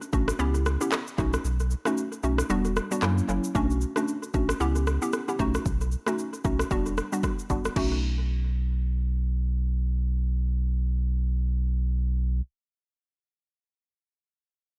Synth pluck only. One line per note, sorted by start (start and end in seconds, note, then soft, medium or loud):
0.13 0.33 A3 medium
0.13 0.33 C#4 medium
0.13 0.33 D4 medium
0.13 0.33 F#4 medium
0.39 0.77 B3 loud
0.39 0.77 C#4 medium
0.39 0.77 E4 medium
0.39 0.77 G4 loud
0.81 0.98 B3 medium
0.81 0.98 C#4 medium
0.81 0.98 E4 medium
0.81 0.98 G4 medium
1.18 1.38 A3 medium
1.18 1.38 C#4 medium
1.18 1.38 D#4 medium
1.18 1.38 F#4 medium
1.86 2.03 A3 medium
1.86 2.03 C#4 medium
1.86 2.03 D#4 medium
1.86 2.03 F#4 medium
2.23 2.43 A3 medium
2.23 2.43 C#4 medium
2.23 2.43 D#4 medium
2.23 2.43 F#4 medium
2.50 2.88 G3 medium
2.50 2.88 B3 medium
2.50 2.88 D4 medium
2.50 2.88 F#4 loud
2.91 3.08 G3 medium
2.91 3.09 B3 medium
2.91 3.09 D4 medium
2.91 3.09 F#4 medium
3.02 3.27 F#3 medium
3.02 3.27 A#3 medium
3.02 3.27 C#4 medium
3.02 3.27 E4 loud
3.28 3.48 F#3 medium
3.28 3.48 A#3 medium
3.28 3.48 C#4 medium
3.28 3.49 E4 medium
3.55 3.93 A3 medium
3.55 3.93 C#4 medium
3.55 3.93 D4 medium
3.55 3.93 F#4 loud
3.96 4.14 A3 medium
3.96 4.14 C#4 medium
3.96 4.14 D4 medium
3.96 4.14 F#4 medium
4.34 4.54 A3 medium
4.34 4.54 C#4 medium
4.34 4.54 D4 medium
4.34 4.54 F#4 medium
4.60 4.98 B3 medium
4.60 4.98 C#4 medium
4.60 4.98 E4 medium
4.60 4.99 G4 loud
5.02 5.19 B3 medium
5.02 5.19 C#4 medium
5.02 5.19 E4 medium
5.02 5.19 G4 medium
5.28 5.45 B3 medium
5.28 5.38 C#4 medium
5.28 5.45 E4 medium
5.28 5.46 G4 medium
5.39 5.64 A3 medium
5.39 5.64 C#4 medium
5.39 5.64 D#4 medium
5.39 5.64 F#4 loud
6.07 6.24 A3 medium
6.07 6.24 C#4 medium
6.07 6.24 D#4 medium
6.07 6.25 F#4 medium
6.44 6.64 A3 medium
6.44 6.64 C#4 medium
6.44 6.64 D#4 medium
6.44 6.64 F#4 medium
6.71 7.09 G3 medium
6.71 7.09 B3 medium
6.71 7.09 D4 medium
6.71 7.09 F#4 loud
7.12 7.30 G3 medium
7.12 7.30 B3 medium
7.12 7.30 D4 medium
7.12 7.30 F#4 medium
7.50 7.69 G3 medium
7.50 7.70 B3 medium
7.50 7.70 D4 medium
7.50 7.70 F#4 medium
7.76 12.41 A3 medium
7.76 12.41 C#4 medium
7.76 12.41 D#4 medium
7.76 12.42 F#4 loud